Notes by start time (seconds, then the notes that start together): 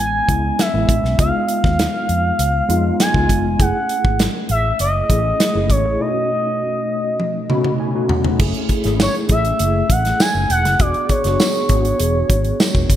Already playing: G#3 B3 C#4 E4
0.00 A1 G#5
0.28 C#2 G#3 B3 C#4 E4, kick, closed hi-hat
0.59 E5, snare, closed hi-hat
0.73 A1 G#3 B3 C#4 E4
0.89 A1, kick, closed hi-hat
1.04 B1, snare
1.18 C#2 G#3 B3 D#4 F4 F5, kick, closed hi-hat
1.48 closed hi-hat
1.64 D#2, kick, snare
1.79 snare, closed hi-hat
2.09 F2, closed hi-hat
2.39 C#2, closed hi-hat
2.68 F2 G#3 B3 D#4 F4, closed hi-hat
3.00 G#5, snare, closed hi-hat
3.13 C#2 G#3 B3 D#4 F4, kick
3.29 F#1, kick, closed hi-hat
3.44 F1
3.59 F#1 A3 C#4 E4 G#4 F#5, kick, closed hi-hat
3.89 closed hi-hat
4.04 G#1, kick
4.19 snare, closed hi-hat
4.49 A1 E5, closed hi-hat
4.79 F#1 D#5, closed hi-hat
5.09 A1 A3 C#4 E4 G#4, kick, closed hi-hat
5.40 snare, closed hi-hat
5.54 F#1 A3 C#4 E4 G#4
5.70 G#1 C#5, kick, closed hi-hat
5.85 A1
5.99 B2 A3 C#4 D#4 E4 D#5
6.07 F#4
7.20 high tom
7.49 B2 A3 C#4 D#4 F#4 B5, mid tom
7.64 mid tom
7.80 G#5
7.94 B2 A3 C#4 D#4 F#4
8.09 F#5, floor tom
8.24 floor tom
8.39 F#1 A3 C#4 E4 G#4, kick, crash
8.54 closed hi-hat
8.69 kick, closed hi-hat
8.84 G#1 A3 C#4 E4 G#4, snare, closed hi-hat
9.00 C#5, snare, tambourine
9.15 closed hi-hat
9.29 A1 A3 C#4 E4 G#4 E5, kick, closed hi-hat
9.45 closed hi-hat
9.59 F#1, closed hi-hat
9.90 A1 F#5, kick, closed hi-hat
10.05 snare, closed hi-hat
10.20 G#5, snare, tambourine
10.35 F#1
10.50 E1 F#5, closed hi-hat
10.65 F#1, snare, closed hi-hat
10.79 E1 B3 D4 F#4 G#4 D5, kick, closed hi-hat
10.94 closed hi-hat
11.09 C#5, kick, closed hi-hat
11.24 F#1 B3 D4 F#4 G#4, snare, closed hi-hat
11.40 snare, tambourine
11.55 closed hi-hat
11.69 G#1 B3 D4 F#4 G#4, kick, closed hi-hat
11.85 closed hi-hat
12.00 E1, closed hi-hat
12.29 G#1, kick, closed hi-hat
12.44 closed hi-hat
12.60 snare, tambourine
12.75 E1, kick
12.90 F#1, kick, closed hi-hat